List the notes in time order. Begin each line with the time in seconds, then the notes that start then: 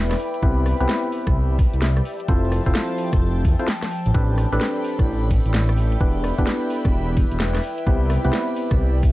Already playing: E1 B3 D4 E4 G4 B4 D5 E5 G5 B5
0.11 cross-stick, snare, closed hi-hat
0.19 open hi-hat
0.34 closed hi-hat
0.42 C2 B3 C4 E4 G4 B4, kick
0.66 G4, cross-stick, open hi-hat
0.80 C2 B3 C4 E4 G4 B4, closed hi-hat
0.89 snare
1.04 D5, closed hi-hat
1.12 open hi-hat
1.27 C2, kick, cross-stick, closed hi-hat
1.59 kick, open hi-hat
1.73 C2, closed hi-hat
1.82 snare
1.97 cross-stick, closed hi-hat
2.05 F3 C5 A5, open hi-hat
2.20 closed hi-hat
2.28 F1 C4 E4 F4 A4 C5, kick
2.48 G5
2.52 cross-stick, open hi-hat
2.66 F1 C4 E4 F4 A4 C5, kick, closed hi-hat
2.75 snare
2.90 closed hi-hat
2.98 A5, open hi-hat
3.13 F1, kick, cross-stick, closed hi-hat
3.45 F2, kick, open hi-hat
3.59 C4 E4 F4 A4 C5, closed hi-hat
3.68 snare
3.83 cross-stick, snare, closed hi-hat
3.91 open hi-hat
4.06 A1, closed hi-hat
4.14 A1 C4 D4 G4 A4 B4 D5 B5, kick
4.38 cross-stick, open hi-hat
4.52 A1 C4 D4 G4 A4 B4, closed hi-hat
4.61 snare
4.76 E5, closed hi-hat
4.84 open hi-hat
4.99 A1, kick, cross-stick, closed hi-hat
5.31 kick, open hi-hat
5.45 A1, closed hi-hat
5.54 snare
5.69 cross-stick, closed hi-hat
5.77 open hi-hat
5.92 closed hi-hat
6.00 E1 B3 D4 E4 G4 B4 E5 B5, kick
6.15 B4
6.24 cross-stick, open hi-hat
6.38 E1 B3 D4 E4 G4 B4, kick, closed hi-hat
6.47 snare
6.62 closed hi-hat
6.70 open hi-hat
6.75 G5
6.85 E1, kick, cross-stick, closed hi-hat
7.17 kick, open hi-hat
7.31 E1, closed hi-hat
7.40 snare
7.55 cross-stick, snare, closed hi-hat
7.63 D5 B5, open hi-hat
7.78 closed hi-hat
7.87 C2 B3 C4 E4 G4 B4, kick
8.02 G4
8.10 cross-stick, open hi-hat
8.25 C2 B3 C4 E4 G4 B4, closed hi-hat
8.33 snare
8.48 D5, closed hi-hat
8.56 open hi-hat
8.71 C2, kick, cross-stick, closed hi-hat
9.03 kick, open hi-hat